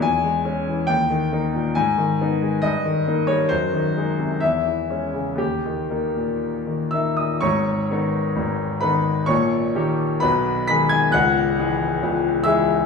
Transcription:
<<
  \new Staff \with { instrumentName = "Grand piano" } { \time 2/4 \key gis \minor \tempo 4 = 65 gis''4 g''4 | gis''4 dis''8. cis''16 | bis'4 e''4 | g'4 r8 <e'' e'''>16 <dis'' dis'''>16 |
<cis'' cis'''>4. <b' b''>8 | <cis'' cis'''>4 <b' b''>8 <b'' b'''>16 <gis'' gis'''>16 | <fis'' fis'''>4. <e'' e'''>8 | }
  \new Staff \with { instrumentName = "Grand piano" } { \clef bass \time 2/4 \key gis \minor e,16 gis16 <gis cis'>16 e16 dis,16 dis16 <ais dis'>16 ais,16 | gis,16 dis16 <b dis'>16 gis16 g,16 dis16 <ais dis'>16 g16 | fis,16 dis16 <gis dis'>16 bis,16 e,16 e16 <gis cis'>16 cis16 | dis,16 dis16 <ais dis'>16 ais,8 dis16 <ais dis'>16 ais,16 |
<gis,, gis,>8 <dis b dis'>8 <gis,, gis,>8 <dis b dis'>8 | <ais,, ais,>8 <dis ais g'>8 <b,, b,>8 <dis gis gis'>8 | <cis,, cis,>8 <e gis gis'>8 <cis,, cis,>8 <e gis gis'>8 | }
>>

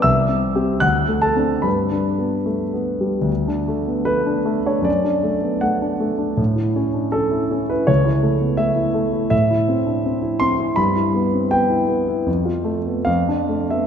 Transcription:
<<
  \new Staff \with { instrumentName = "Grand piano" } { \time 2/4 \key g \major \tempo 4 = 79 <e'' e'''>4 <fis'' fis'''>8 <a' a''>8 | <b' b''>4 r4 | \key d \major r4 b'8. cis''16 | d''4 fis''4 |
r4 a'8. b'16 | cis''4 e''4 | \key e \phrygian e''4. c'''8 | b''4 g''4 |
r4 f''8. e''16 | }
  \new Staff \with { instrumentName = "Grand piano" } { \time 2/4 \key g \major \tuplet 3/2 { c,8 c'8 <c' g'>8 d,8 a8 <c' d'>8 } | \tuplet 3/2 { g,8 d'8 b8 a8 b8 g8 } | \key d \major d,16 d'16 a16 b16 a16 d'16 a16 d'16 | fis,16 d'16 a16 b16 a16 d'16 a16 d'16 |
a,16 e'16 cis'16 d'16 cis'16 e'16 cis'16 e'16 | cis,16 e'16 a16 b16 a16 e'16 a16 e'16 | \key e \phrygian a,16 e'16 c'16 d'16 c'16 e'16 c'16 e'16 | g,16 e'16 b16 c'16 b16 e'16 b16 e'16 |
f,16 f'16 a16 b16 f,16 d'16 a16 b16 | }
>>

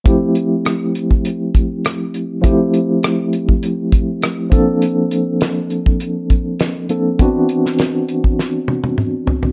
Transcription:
<<
  \new Staff \with { instrumentName = "Tine electric piano" } { \time 4/4 \key c \major \tempo 4 = 101 <f a c' e' g'>1 | <f a c' e' g'>2.~ <f a c' e' g'>8 <f bes c' d' a'>8~ | <f bes c' d' a'>2.~ <f bes c' d' a'>8 <f bes c' d' a'>8 | <e b c' d' fis'>1 | }
  \new DrumStaff \with { instrumentName = "Drums" } \drummode { \time 4/4 <hh bd>8 hh8 <hh ss>8 hh16 bd16 hh8 <hh bd>8 <hh ss>8 hh8 | <hh bd>8 hh8 <hh ss>8 hh16 bd16 hh8 <hh bd>8 <hh ss>8 <hh bd>8 | hh8 hh8 <hh sn>8 hh16 bd16 hh8 <hh bd>8 <hh sn>8 hh8 | <hh bd>8 hh16 sn16 <hh sn>8 hh16 bd16 sn8 tommh16 tommh16 toml8 tomfh16 tomfh16 | }
>>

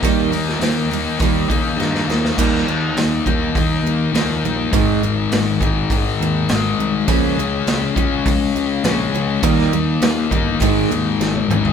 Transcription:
<<
  \new Staff \with { instrumentName = "Distorted electric guitar" } { \clef bass \time 4/4 \key ees \mixolydian \tempo 4 = 102 <ees bes ees'>8 <ees bes ees'>8 <ees bes ees'>8 <ees bes ees'>8 <ees bes ees'>8 <ees bes ees'>8 <ees bes ees'>8 <ees bes ees'>8 | <ees bes ees'>4. <ees bes ees'>4. <ees bes ees'>4 | <aes, ees aes>4. <aes, ees aes>4. <aes, ees aes>4 | <des aes des'>4. <des aes des'>4. <des aes des'>4 |
<ees bes ees'>4. <ees bes ees'>8 <aes, ees aes>4. <aes, ees aes>8 | }
  \new Staff \with { instrumentName = "Steel-string acoustic guitar" } { \clef bass \time 4/4 \key ees \mixolydian <ees g bes>8 <ees g>8 <ees g>8 <ees g>8 <ees g bes>8 <ees g>8 <ees g>8 <ees g>8 | <ees g bes>8 <ees g>8 <ees g>8 <ees g>8 <ees g>8 <ees g>8 <ees g>8 <ees g>8 | <aes, ees aes>8 aes,8 <aes, ees>8 <aes, ees>8 <aes, ees>8 <aes, ees>8 <aes, ees>8 <aes, ees>8 | <des f bes>8 <des f>8 <des f>8 <des f>8 <des f>8 <des f>8 <des f>8 <des f>8 |
<ees g bes>8 <ees g>8 <ees g>8 <ees g>8 <aes, ees aes>8 <aes, ees>8 <aes, ees>8 <aes, ees>8 | }
  \new Staff \with { instrumentName = "Picked electric bass" } { \clef bass \time 4/4 \key ees \mixolydian ees,8 ees,8 ees,4 ees,8 des8 g,8 ees,8 | ees,8 ees,8 ees,8 ees,8 ees,8 ees,8 des,8 bes,,8 | aes,,8 aes,,8 aes,,8 aes,,8 aes,,8 ees,8 aes,,8 c,8 | des,8 des,8 des,8 des,8 des,8 des,8 bes,,8 des,8 |
ees,8 ees,8 ees,8 g,,8 aes,,8 ees,8 aes,,8 aes,,8 | }
  \new DrumStaff \with { instrumentName = "Drums" } \drummode { \time 4/4 <hho bd>8 hho16 sn16 <hho sn>8 hho8 <hho bd>8 <hho bd>8 sn16 sn16 sn16 sn16 | <cymc bd>16 sn8. <hho sn>8 bd8 <hho bd>4 <hho sn>4 | <hho bd>4 <hho sn>8 bd8 <hho bd>4 <hho sn>4 | <hho bd>4 <hho sn>8 bd8 <hho bd>4 <hho sn>4 |
<hho bd>16 sn8. <hho sn>8 bd8 <hho bd>4 sn16 tommh16 toml16 tomfh16 | }
>>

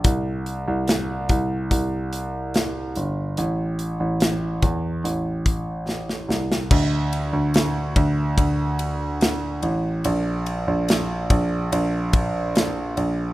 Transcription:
<<
  \new Staff \with { instrumentName = "Grand piano" } { \clef bass \time 4/4 \key c \mixolydian \tempo 4 = 72 c,8. c,8. c,8 c,4. g,,8 | a,,8. a,,8. e,8 a,,4. c,8 | d,8. d,8. d,8 d,4. a,,8 | bes,,8. bes,,8. bes,,8 bes,,4. bes,,8 | }
  \new DrumStaff \with { instrumentName = "Drums" } \drummode { \time 4/4 <hh bd>8 hh8 <hh sn>8 <hh bd>8 <hh bd>8 hh8 <hh sn>8 hh8 | hh8 hh8 <hh sn>8 <hh bd>8 hh8 <hh bd>8 sn16 sn16 sn16 sn16 | <cymc bd>8 cymr8 <cymr sn>8 <bd cymr>8 <bd cymr>8 cymr8 <cymr sn>8 cymr8 | cymr8 cymr8 <cymr sn>8 <bd cymr>8 cymr8 <bd cymr>8 <cymr sn>8 cymr8 | }
>>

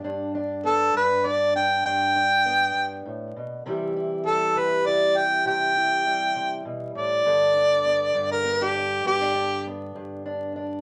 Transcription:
<<
  \new Staff \with { instrumentName = "Harmonica" } { \time 12/8 \key g \major \tempo 4. = 67 r4 a'8 b'8 d''8 g''8 g''2 r4 | r4 a'8 b'8 d''8 g''8 g''2 r8 d''8~ | d''4.~ d''16 bes'8 g'8. g'4 r2 | }
  \new Staff \with { instrumentName = "Steel-string acoustic guitar" } { \time 12/8 \key g \major << { d'8 d'8 b4 d'8 d'8 d'8 d'8 b2 | <e g e' g'>8 e'8 g4 e'8 g'8 g'8 e'8 g2 | <d b d'>8 d'8 b4 b16 d'16 d'8 b16 d'16 d'8 b4 d'8 d'8 | } \\ { g,4. g,4. g,4. g,8 a,8 b,8 | c4. c4. c4. c8 b,8 a,8 | g,4. g,4. g,4. g,4. | } >> }
>>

